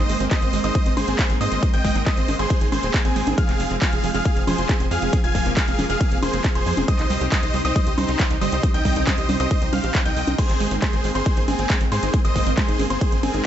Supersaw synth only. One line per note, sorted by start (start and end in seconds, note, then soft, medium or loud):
0.00 0.25 C5 medium
0.00 0.25 D#5 loud
0.31 0.59 C5 medium
0.31 0.59 D#5 medium
0.64 0.92 C5 medium
0.64 0.92 D#5 loud
0.97 1.34 G#4 medium
0.97 1.34 C5 medium
1.41 1.69 C5 medium
1.41 1.69 D#5 loud
1.74 2.02 D#5 medium
1.74 2.02 G5 loud
2.06 2.35 C5 medium
2.06 2.35 D#5 loud
2.39 2.67 G#4 medium
2.39 2.67 C5 loud
2.72 3.00 G#4 medium
2.72 3.00 C5 medium
3.05 3.33 C4 medium
3.05 3.33 G#4 medium
3.38 3.75 G#4 medium
3.38 3.75 F5 loud
3.82 4.10 G#4 medium
3.82 4.10 F5 medium
4.14 4.43 G#4 medium
4.14 4.43 F5 loud
4.47 4.85 G#4 medium
4.47 4.85 C5 loud
4.91 5.19 G#4 medium
4.91 5.19 F5 medium
5.24 5.52 F5 medium
5.24 5.52 G#5 loud
5.57 5.85 G#4 medium
5.57 5.85 F5 medium
5.90 6.18 G#4 medium
5.90 6.18 F5 medium
6.23 6.51 G#4 medium
6.23 6.51 C5 medium
6.55 6.83 G#4 medium
6.55 6.83 C5 medium
6.88 7.26 C5 medium
6.88 7.26 D#5 loud
7.32 7.60 C5 medium
7.32 7.60 D#5 loud
7.65 7.93 C5 medium
7.65 7.93 D#5 loud
7.98 8.35 D#4 medium
7.98 8.35 C5 loud
8.41 8.70 C5 medium
8.41 8.70 D#5 medium
8.74 9.02 D#5 medium
8.74 9.02 G5 loud
9.07 9.35 C5 medium
9.07 9.35 D#5 loud
9.40 9.68 C5 medium
9.40 9.68 D#5 loud
9.73 10.01 C5 medium
9.73 10.01 F5 medium
10.06 10.34 D#5 medium
10.06 10.34 G5 medium
10.38 10.76 G#4 medium
10.38 10.76 C5 loud
10.82 11.10 G#4 medium
10.82 11.10 C5 medium
11.15 11.43 G#4 medium
11.15 11.43 C5 loud
11.48 11.86 C4 medium
11.48 11.86 G#4 medium
11.92 12.20 G#4 medium
11.92 12.20 C5 loud
12.25 12.53 C5 medium
12.25 12.53 D#5 medium
12.58 12.86 G#4 medium
12.58 12.86 C5 medium
12.90 13.19 G#4 medium
12.90 13.19 C5 medium
13.23 13.46 C4 medium
13.23 13.46 G#4 medium